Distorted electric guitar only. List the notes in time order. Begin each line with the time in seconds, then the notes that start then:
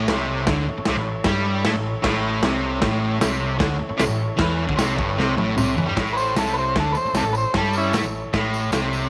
0.09 C3
0.47 D3
0.69 muted distorted electric guitar stroke
0.78 muted distorted electric guitar stroke
0.88 C3
0.98 A2
1.24 G3
1.65 A3
1.74 A2
2.03 A2
2.44 C3
2.81 A2
3.21 C3
3.59 D3
3.79 muted distorted electric guitar stroke
3.89 muted distorted electric guitar stroke
3.97 C3
4.06 A2
4.37 E3
4.67 D3
4.75 C3
4.97 G2
5.17 C3
5.37 A2
5.57 C3
5.77 E3
5.86 G3
5.95 A2
6.36 C3
6.76 D3
6.97 muted distorted electric guitar stroke
7.06 muted distorted electric guitar stroke
7.16 C3
7.26 A2
7.55 G3
7.94 A3
8.05 A2
8.33 A2
8.72 C3